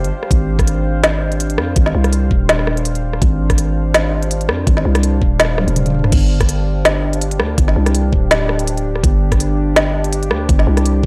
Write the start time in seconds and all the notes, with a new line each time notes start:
Already playing: D4 G4 C5 F5
0.04 G1, closed hi-hat
0.23 cross-stick
0.31 G#1 D4, kick, closed hi-hat
0.51 G4
0.59 kick, cross-stick, closed hi-hat
0.67 closed hi-hat
1.04 snare, closed hi-hat
1.32 closed hi-hat
1.40 closed hi-hat
1.50 closed hi-hat
1.58 F2, cross-stick
1.76 G#1, kick, closed hi-hat
1.86 snare
1.95 C2
2.04 cross-stick, closed hi-hat
2.13 closed hi-hat
2.31 D#1, kick
2.49 snare, closed hi-hat
2.59 cross-stick
2.67 cross-stick
2.77 closed hi-hat
2.85 closed hi-hat
2.95 closed hi-hat
3.13 cross-stick
3.22 G#1, kick, closed hi-hat
3.50 kick, cross-stick, closed hi-hat
3.58 closed hi-hat
3.94 snare, closed hi-hat
4.23 closed hi-hat
4.31 closed hi-hat
4.41 closed hi-hat
4.49 F2, cross-stick
4.67 G#1, kick, closed hi-hat
4.77 snare
4.85 C2
4.95 cross-stick, closed hi-hat
5.03 closed hi-hat
5.22 D#1, kick
5.40 snare, closed hi-hat
5.45 cross-stick
5.58 cross-stick, high tom
5.61 high tom
5.64 D#1, closed hi-hat, high tom
5.76 closed hi-hat, mid tom
5.86 closed hi-hat, mid tom
5.90 mid tom
5.94 mid tom
5.99 mid tom
6.04 cross-stick, mid tom
6.12 G1, kick, closed hi-hat, crash
6.40 kick, cross-stick, closed hi-hat
6.49 closed hi-hat
6.85 snare, closed hi-hat
7.13 closed hi-hat
7.21 closed hi-hat
7.31 closed hi-hat
7.39 D2, cross-stick
7.58 G1, kick, closed hi-hat
7.68 snare
7.76 C2
7.86 cross-stick, closed hi-hat
7.95 closed hi-hat
8.12 D1, kick
8.31 snare, closed hi-hat
8.49 cross-stick
8.59 closed hi-hat
8.67 closed hi-hat
8.77 closed hi-hat
8.95 cross-stick
9.04 G1, kick, closed hi-hat
9.32 kick, cross-stick, closed hi-hat
9.40 closed hi-hat
9.76 snare, closed hi-hat
10.04 closed hi-hat
10.13 closed hi-hat
10.23 closed hi-hat
10.31 D2, cross-stick
10.49 G1, kick, closed hi-hat
10.59 snare
10.67 C2
10.77 cross-stick, closed hi-hat
10.86 closed hi-hat